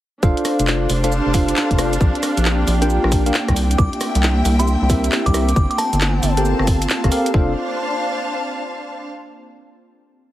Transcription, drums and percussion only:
0.23 kick loud
0.23 shaker soft
0.37 closed hi-hat soft
0.45 cross-stick medium
0.45 open hi-hat loud
0.45 shaker medium
0.59 closed hi-hat medium
0.59 shaker soft
0.67 clap loud
0.67 shaker soft
0.90 open hi-hat loud
0.90 shaker medium
1.04 closed hi-hat medium
1.04 shaker soft
1.12 shaker soft
1.34 kick loud
1.34 open hi-hat loud
1.34 shaker medium
1.49 closed hi-hat medium
1.49 shaker soft
1.56 clap loud
1.56 shaker soft
1.71 kick medium
1.71 closed hi-hat medium
1.79 cross-stick medium
1.79 open hi-hat loud
1.79 shaker medium
1.93 closed hi-hat medium
1.93 shaker soft
2.01 kick loud
2.01 shaker soft
2.15 closed hi-hat soft
2.23 cross-stick medium
2.23 open hi-hat loud
2.23 shaker medium
2.37 closed hi-hat medium
2.37 shaker soft
2.45 clap loud
2.45 shaker soft
2.68 open hi-hat loud
2.68 shaker medium
2.82 closed hi-hat medium
2.82 shaker soft
2.90 shaker soft
3.04 cross-stick medium
3.12 kick loud
3.12 open hi-hat loud
3.12 shaker medium
3.26 closed hi-hat medium
3.26 shaker soft
3.34 clap loud
3.34 shaker soft
3.48 kick medium
3.48 cross-stick medium
3.48 closed hi-hat medium
3.56 open hi-hat loud
3.56 shaker medium
3.71 closed hi-hat medium
3.71 shaker soft
3.79 kick loud
3.79 shaker soft
3.93 closed hi-hat soft
4.01 cross-stick medium
4.01 open hi-hat loud
4.01 shaker medium
4.15 closed hi-hat medium
4.15 shaker soft
4.23 clap loud
4.23 shaker soft
4.45 open hi-hat loud
4.45 shaker medium
4.60 closed hi-hat medium
4.60 shaker soft
4.67 shaker soft
4.90 kick loud
4.90 open hi-hat loud
4.90 shaker medium
5.04 closed hi-hat medium
5.04 shaker soft
5.12 clap loud
5.12 shaker soft
5.26 kick medium
5.26 closed hi-hat medium
5.34 cross-stick medium
5.34 open hi-hat loud
5.34 shaker medium
5.49 closed hi-hat medium
5.49 shaker soft
5.56 kick loud
5.56 shaker soft
5.71 closed hi-hat soft
5.79 cross-stick medium
5.79 open hi-hat loud
5.79 shaker medium
5.93 closed hi-hat medium
5.93 shaker soft
6.01 clap loud
6.01 shaker soft
6.23 open hi-hat loud
6.23 shaker medium
6.37 closed hi-hat medium
6.37 shaker soft
6.45 shaker soft
6.59 cross-stick medium
6.67 kick loud
6.67 open hi-hat loud
6.67 shaker medium
6.82 closed hi-hat medium
6.82 shaker soft
6.90 clap loud
6.90 shaker soft
7.04 kick medium
7.04 cross-stick medium
7.04 closed hi-hat soft
7.12 open hi-hat loud
7.12 shaker medium
7.26 closed hi-hat medium
7.26 shaker soft
7.34 kick loud

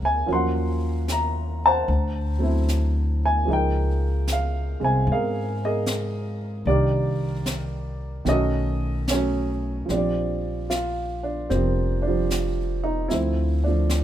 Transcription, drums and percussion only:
0.28 brush sweep soft
1.08 snare soft
1.08 hi-hat pedal medium
1.88 brush sweep soft
2.68 snare soft
2.68 hi-hat pedal soft
3.48 brush sweep soft
4.28 snare soft
4.28 hi-hat pedal soft
5.08 brush sweep soft
5.86 snare soft
5.86 hi-hat pedal soft
6.66 brush sweep soft
7.46 snare soft
7.46 hi-hat pedal soft
8.25 brush sweep soft
8.25 snare soft
9.08 snare soft
9.08 hi-hat pedal soft
9.89 brush sweep soft
9.89 snare soft
10.70 snare soft
10.70 hi-hat pedal soft
11.50 brush sweep soft
11.50 snare soft
12.30 snare soft
12.30 hi-hat pedal soft
13.10 brush sweep soft
13.10 snare soft
13.89 snare soft
13.89 hi-hat pedal soft

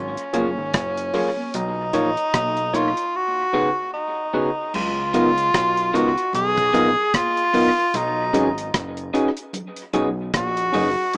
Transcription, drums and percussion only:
0.17 closed hi-hat medium
0.34 closed hi-hat medium
0.34 high conga medium
0.34 low conga medium
0.74 kick loud
0.74 cross-stick loud
0.74 closed hi-hat medium
0.97 closed hi-hat medium
1.14 open hi-hat medium
1.14 low conga medium
1.37 high conga soft
1.54 closed hi-hat medium
1.54 low conga medium
1.93 closed hi-hat medium
1.93 low conga medium
2.17 closed hi-hat medium
2.34 kick medium
2.34 cross-stick loud
2.34 closed hi-hat medium
2.34 high conga soft
2.57 closed hi-hat soft
2.74 closed hi-hat medium
2.97 closed hi-hat medium
4.74 crash loud
4.74 low conga medium
5.14 closed hi-hat medium
5.14 low conga medium
5.38 closed hi-hat medium
5.54 kick loud
5.54 cross-stick loud
5.54 closed hi-hat medium
5.77 closed hi-hat soft
5.95 closed hi-hat medium
6.18 closed hi-hat medium
6.33 closed hi-hat medium
6.33 low conga medium
6.57 kick medium
6.57 closed hi-hat medium
6.73 closed hi-hat medium
6.73 low conga medium
7.13 kick loud
7.13 cross-stick loud
7.13 closed hi-hat loud
7.13 high conga soft
7.37 closed hi-hat medium
7.54 open hi-hat medium
7.54 low conga medium
7.94 closed hi-hat loud
7.94 low conga medium
8.34 closed hi-hat medium
8.34 low conga medium
8.58 closed hi-hat medium
8.74 kick loud
8.74 cross-stick loud
8.74 closed hi-hat medium
8.97 closed hi-hat medium
9.15 closed hi-hat medium
9.37 closed hi-hat medium
9.53 closed hi-hat medium
9.53 low conga medium
9.76 closed hi-hat medium
9.93 closed hi-hat medium
9.93 low conga medium
10.34 kick loud
10.34 cross-stick loud
10.34 closed hi-hat medium
10.34 high conga soft
10.57 closed hi-hat medium
10.74 open hi-hat medium
10.74 low conga medium
11.13 closed hi-hat loud

